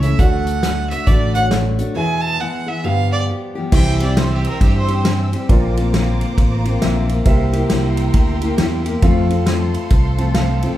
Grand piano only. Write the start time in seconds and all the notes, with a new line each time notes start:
0.03 E4 A4 C#5
0.20 F#4 A4 D5
1.35 F#4 A4 C#5
1.95 G#4 B4 E5
2.84 G4 B4 F5
3.72 E4 G4 C5 E5
5.49 F4 A#4 C5 D5
6.82 E5
7.26 G4 A#4 C5 E5
9.02 F4 A4 C5 F5
10.19 A5
10.35 F5